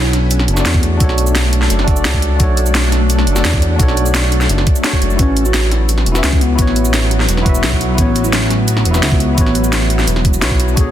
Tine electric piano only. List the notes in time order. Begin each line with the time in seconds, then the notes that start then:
Already playing: D4 F#4 A4 C#5
0.54 D4 F#4
0.58 A4 D5
0.97 D4 F#4
1.02 A4 C#5
1.84 D4 F#4
1.89 A4 D5
2.37 D4 F#4
2.41 A4 C#5
3.33 D4 F#4
3.37 A4 D5
3.76 D4 F#4
3.81 A4 C#5
4.83 D4 F#4 A4 C#5
5.16 E4 F#4
5.20 B4 C#5
6.12 E4 F#4
6.16 B4 E5
6.55 E4 F#4
6.60 B4 C#5
7.43 E4 F#4
7.47 B4 E5
7.95 E4 F#4
7.99 B4 C#5
8.91 E4 F#4
8.95 B4 E5
9.34 E4 F#4
9.39 B4 C#5
10.41 E4 F#4 B4 C#5
10.74 D4 F#4
10.78 A4 C#5